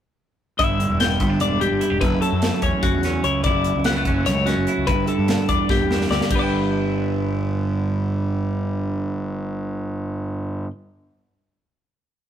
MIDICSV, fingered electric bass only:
0, 0, Header, 1, 2, 480
1, 0, Start_track
1, 0, Tempo, 408998
1, 694, Time_signature, 7, 3, 24, 8
1, 14432, End_track
2, 0, Start_track
2, 0, Title_t, "Fingered electric bass"
2, 0, Program_c, 0, 33
2, 696, Note_on_c, 0, 31, 82
2, 1004, Note_off_c, 0, 31, 0
2, 1055, Note_on_c, 0, 28, 67
2, 1409, Note_off_c, 0, 28, 0
2, 1409, Note_on_c, 0, 31, 64
2, 1648, Note_off_c, 0, 31, 0
2, 1648, Note_on_c, 0, 28, 79
2, 1957, Note_off_c, 0, 28, 0
2, 2009, Note_on_c, 0, 31, 68
2, 2111, Note_off_c, 0, 31, 0
2, 2238, Note_on_c, 0, 28, 71
2, 2365, Note_off_c, 0, 28, 0
2, 2365, Note_on_c, 0, 30, 77
2, 2571, Note_off_c, 0, 30, 0
2, 2726, Note_on_c, 0, 42, 79
2, 2931, Note_off_c, 0, 42, 0
2, 3084, Note_on_c, 0, 40, 82
2, 3187, Note_off_c, 0, 40, 0
2, 3321, Note_on_c, 0, 30, 87
2, 3425, Note_off_c, 0, 30, 0
2, 3447, Note_on_c, 0, 40, 69
2, 3755, Note_off_c, 0, 40, 0
2, 3804, Note_on_c, 0, 37, 82
2, 4038, Note_on_c, 0, 30, 87
2, 4055, Note_off_c, 0, 37, 0
2, 4350, Note_off_c, 0, 30, 0
2, 4406, Note_on_c, 0, 37, 68
2, 4756, Note_on_c, 0, 30, 70
2, 4774, Note_off_c, 0, 37, 0
2, 5002, Note_on_c, 0, 37, 76
2, 5020, Note_off_c, 0, 30, 0
2, 5313, Note_off_c, 0, 37, 0
2, 5357, Note_on_c, 0, 30, 69
2, 5463, Note_off_c, 0, 30, 0
2, 5604, Note_on_c, 0, 37, 69
2, 5722, Note_on_c, 0, 31, 80
2, 5739, Note_off_c, 0, 37, 0
2, 5930, Note_off_c, 0, 31, 0
2, 6082, Note_on_c, 0, 43, 76
2, 6291, Note_off_c, 0, 43, 0
2, 6439, Note_on_c, 0, 40, 76
2, 6546, Note_off_c, 0, 40, 0
2, 6681, Note_on_c, 0, 31, 89
2, 6787, Note_off_c, 0, 31, 0
2, 6799, Note_on_c, 0, 40, 65
2, 7114, Note_off_c, 0, 40, 0
2, 7162, Note_on_c, 0, 38, 83
2, 7269, Note_off_c, 0, 38, 0
2, 7403, Note_on_c, 0, 31, 76
2, 12488, Note_off_c, 0, 31, 0
2, 14432, End_track
0, 0, End_of_file